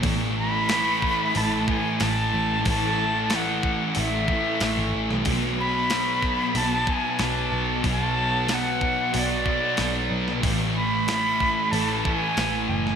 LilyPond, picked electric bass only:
\new Staff \with { instrumentName = "Picked electric bass" } { \clef bass \time 4/4 \key b \dorian \tempo 4 = 93 a,,2 a,,8 r8 a,,8 a,,8 | a,,2 a,,8 r8 a,,16 gis,,16 a,,16 b,,16 | b,,2 b,,8 r8 b,,8 b,,8 | b,,2 b,,8 r8 b,,8 b,,8 |
a,,2 a,,8 r8 a,,8 fis,,8 | }